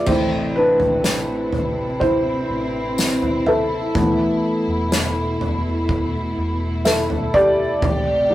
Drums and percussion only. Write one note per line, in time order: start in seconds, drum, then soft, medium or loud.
0.07 kick loud
0.07 floor tom loud
0.07 crash loud
0.80 floor tom medium
1.04 snare loud
1.04 tambourine medium
1.53 floor tom medium
2.01 kick medium
2.01 floor tom medium
2.98 snare loud
2.98 tambourine medium
3.22 floor tom medium
3.46 floor tom medium
3.95 kick loud
3.95 floor tom loud
4.92 snare loud
4.92 tambourine medium
5.41 floor tom medium
5.89 kick medium
5.89 floor tom medium
6.85 snare loud
6.85 tambourine medium
7.10 floor tom medium
7.34 kick medium
7.34 floor tom medium
7.82 kick loud
7.82 floor tom loud